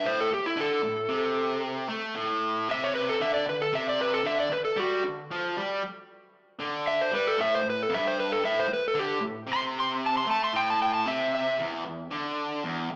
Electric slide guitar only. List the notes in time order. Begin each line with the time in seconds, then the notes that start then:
0.06 C5
0.20 A4
0.34 G4
0.46 E4
0.61 A4
2.71 E5
2.84 C#5
2.95 B4
3.09 A4
3.21 E5
3.34 D5
3.49 B4
3.62 A4
3.75 E5
3.89 D5
4.01 B4
4.14 A4
4.26 E5
4.40 D5
4.52 B4
4.65 A4
4.79 F#4
6.87 E5
7.01 C5
7.15 B4
7.27 A4
7.41 E5
7.55 C5
7.70 B4
7.83 A4
7.94 E5
8.07 C5
8.20 B4
8.32 A4
8.45 E5
8.60 C5
8.73 B4
8.88 A4
8.99 G4
9.53 C6
9.80 C6
10.06 A5
10.17 C6
10.31 A5
10.44 C6
10.56 G5
10.70 A5
10.82 G5
10.94 A5
11.08 E5
11.35 E5